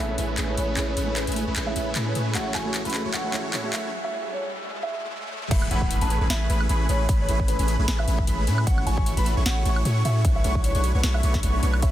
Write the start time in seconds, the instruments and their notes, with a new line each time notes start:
Already playing: ambient pad G#3 A3 C#4, riser
0.00 808-style bass A1, supersaw synth A3 C#4 E4 G#4 B4, grand piano E5
0.08 felt piano A3 E4 G#4 B4 C#5
0.17 808-style bass A1, felt piano A3 E4 G#4 B4 C#5, supersaw synth A3 C#4 E4 G#4 B4, closed hi-hat
0.38 808-style bass A1, supersaw synth A3 C#4 E4 G#4 B4, clap, closed hi-hat
0.47 felt piano A3 E4 G#4 B4 C#5
0.57 808-style bass A1, supersaw synth A3 C#4 E4 G#4 B4, grand piano C#5, closed hi-hat
0.76 808-style bass A1, felt piano A3 E4 G#4 B4 C#5, supersaw synth A3 C#4 E4 G#4 B4, clap, closed hi-hat
0.88 grand piano C#5
0.97 808-style bass A1, supersaw synth A3 C#4 E4 G#4 B4, closed hi-hat
1.07 felt piano A3 E4 G#4 B4 C#5
1.16 grand piano B4, clap, closed hi-hat
1.27 808-style bass A1, supersaw synth A3 C#4 E4 G#4 B4, closed hi-hat
1.32 felt piano A3, closed hi-hat
1.36 felt piano E4 G#4 B4 C#5, closed hi-hat
1.47 808-style bass A1, supersaw synth A3 C#4 E4 G#4 B4
1.56 808-style bass A1, supersaw synth A3 C#4 E4 G#4 B4, clap, closed hi-hat
1.66 felt piano A3 E4 G#4 B4 C#5, grand piano E5
1.75 808-style bass A1, felt piano A3 E4 G#4 B4 C#5, supersaw synth A3 C#4 E4 G#4 B4, closed hi-hat
1.96 808-style bass A2, supersaw synth A3 C#4 E4 G#4 B4, clap, closed hi-hat
2.05 felt piano A3 E4 G#4 B4 C#5
2.15 808-style bass A2, supersaw synth A3 C#4 E4 G#4 B4, closed hi-hat
2.34 808-style bass A1, felt piano A3 F#4 G#4 C#5 E5, supersaw synth A3 C#4 E4 F#4 C#5, ambient pad E4 G#4, grand piano F#5, clap, closed hi-hat
2.55 808-style bass A1, supersaw synth A3 C#4 E4 F#4 C#5, grand piano G#5, clap, closed hi-hat
2.65 felt piano A3 F#4 G#4 C#5 E5
2.74 clap, closed hi-hat
2.85 808-style bass A1, supersaw synth A3 C#4 E4 F#4 B4, grand piano B5, closed hi-hat
2.90 felt piano A3, closed hi-hat
2.94 felt piano F#4 G#4 C#5 E5, clap, closed hi-hat
3.05 808-style bass A1, supersaw synth A3 C#4 E4 F#4 C#5
3.14 808-style bass A1, supersaw synth A3 C#4 E4 F#4 C#5, grand piano F#5, clap, closed hi-hat
3.24 felt piano A3 F#4 G#4 C#5 E5
3.33 808-style bass A1, felt piano A3 F#4 G#4 C#5 E5, supersaw synth A3 C#4 E4 F#4 C#5, clap, closed hi-hat
3.53 808-style bass A2, supersaw synth A3 C#4 E4 F#4 C#5, clap, closed hi-hat
3.63 felt piano A3 F#4 G#4 C#5 E5
3.73 808-style bass A1, supersaw synth A3 C#4 E4 F#4 C#5, grand piano E5, clap, closed hi-hat
4.04 grand piano E5
4.33 grand piano C#5
4.83 grand piano E5
5.31 high tom
5.42 mid tom
5.51 808-style bass A1, ambient pad G#3 A3 C#4, supersaw synth A3 C#4 E4 G#4 B4, grand piano E5, digital synth lead B5, kick, closed hi-hat, crash, ride, impact
5.62 high woodblock
5.71 808-style bass A1, supersaw synth A3 C#4 E4 G#4 B4, grand piano F#5, digital synth lead B5, closed hi-hat
5.82 kick
5.91 closed hi-hat
6.01 808-style bass A1, supersaw synth A3 C#4 E4 G#4 B4, grand piano A5, digital synth lead B5, closed hi-hat
6.10 closed hi-hat
6.21 808-style bass A1, supersaw synth A3 C#4 E4 G#4 B4, digital synth lead B5
6.30 808-style bass A1, supersaw synth A3 C#4 E4 G#4 B4, grand piano E5, digital synth lead B5, snare, closed hi-hat
6.50 808-style bass A1, supersaw synth A3 C#4 E4 G#4 B4, digital synth lead B5, closed hi-hat
6.60 high woodblock
6.69 808-style bass A1, supersaw synth A3 C#4 E4 G#4 B4, digital synth lead B5, closed hi-hat
6.89 808-style bass A1, supersaw synth A3 C#4 E4 G#4 B4, grand piano C#5, digital synth lead B5, closed hi-hat
7.09 808-style bass A1, supersaw synth A3 C#4 E4 G#4 B4, digital synth lead B5, kick, closed hi-hat, ride
7.20 grand piano C#5
7.28 808-style bass A1, supersaw synth A3 C#4 E4 G#4 B4, digital synth lead B5, closed hi-hat
7.40 kick
7.48 grand piano B4, closed hi-hat
7.59 808-style bass A1, supersaw synth A3 C#4 E4 G#4 B4, digital synth lead B5, closed hi-hat
7.68 closed hi-hat
7.79 808-style bass A1, supersaw synth A3 C#4 E4 G#4 B4, digital synth lead B5
7.88 808-style bass A1, supersaw synth A3 C#4 E4 G#4 B4, digital synth lead B5, snare, closed hi-hat
7.99 grand piano E5, high woodblock
8.07 808-style bass A1, supersaw synth A3 C#4 E4 G#4 B4, digital synth lead B5, closed hi-hat
8.18 kick
8.27 808-style bass A1, supersaw synth A3 C#4 E4 G#4 B4, digital synth lead B5, closed hi-hat
8.47 808-style bass A2, supersaw synth A3 C#4 E4 G#4 B4, digital synth lead B5, closed hi-hat
8.58 high woodblock
8.67 808-style bass A1, ambient pad A3 E4 G#4, supersaw synth A3 C#4 E4 F#4 C#5, grand piano F#5, digital synth lead C#6, kick, closed hi-hat, ride
8.78 high woodblock
8.86 808-style bass A1, supersaw synth A3 C#4 E4 F#4 C#5, grand piano G#5, digital synth lead C#6, closed hi-hat
8.97 kick
9.06 closed hi-hat
9.17 808-style bass A1, supersaw synth A3 C#4 E4 F#4 B4, digital synth lead B5, grand piano B5, closed hi-hat
9.26 closed hi-hat
9.37 808-style bass A1, supersaw synth A3 C#4 E4 F#4 C#5, digital synth lead C#6
9.46 808-style bass A1, supersaw synth A3 C#4 E4 F#4 C#5, grand piano F#5, digital synth lead C#6, snare, closed hi-hat
9.65 808-style bass A1, supersaw synth A3 C#4 E4 F#4 C#5, digital synth lead C#6, closed hi-hat
9.76 high woodblock
9.85 808-style bass A2, supersaw synth A3 C#4 E4 F#4 C#5, digital synth lead C#6, closed hi-hat
10.05 808-style bass A2, supersaw synth A3 C#4 E4 F#4 C#5, grand piano E5, digital synth lead C#6, closed hi-hat
10.24 808-style bass B1, supersaw synth A3 D4 F#4 B4 C#5, ambient pad B3 D4, digital synth lead C#6, kick, closed hi-hat, ride
10.35 grand piano E5
10.44 808-style bass B1, supersaw synth A3 D4 F#4 B4 C#5, digital synth lead C#6, closed hi-hat
10.55 kick
10.64 grand piano C#5, closed hi-hat
10.75 808-style bass B1, supersaw synth A3 D4 F#4 B4 C#5, digital synth lead C#6, closed hi-hat
10.84 closed hi-hat
10.94 808-style bass B1, supersaw synth A3 D4 F#4 B4 C#5, digital synth lead C#6
11.03 808-style bass B1, supersaw synth A3 D4 F#4 B4 C#5, digital synth lead C#6, snare, closed hi-hat
11.14 grand piano E5, high woodblock
11.23 808-style bass B1, supersaw synth A3 D4 F#4 B4 C#5, digital synth lead C#6, closed hi-hat
11.34 kick, snare
11.43 808-style bass B1, supersaw synth A3 D4 F#4 B4 C#5, digital synth lead C#6, closed hi-hat
11.63 808-style bass B1, supersaw synth A3 D4 F#4 B4 C#5, digital synth lead C#6, closed hi-hat
11.74 high woodblock
11.82 808-style bass A1, supersaw synth A3 C#4 E4 G#4 B4, synth arpeggio sound C#5, grand piano E5, digital synth lead B5, kick, closed hi-hat, ride